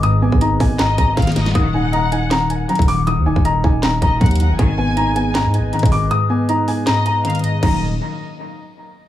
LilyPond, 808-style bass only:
\new Staff \with { instrumentName = "808-style bass" } { \clef bass \time 4/4 \key ees \minor \tempo 4 = 158 aes,,8. aes,,8. aes,,4 aes,,8 aes,,8 ges,,8 | ees,,2. r16 ees,,8.~ | ees,,16 ees,16 ees,,16 ees,,8. ees,,4 ees,,8 ees,8. ges,,16 | aes,,2~ aes,,16 aes,16. aes,,16. r16 aes,,8. |
r1 | ees,,4 r2. | }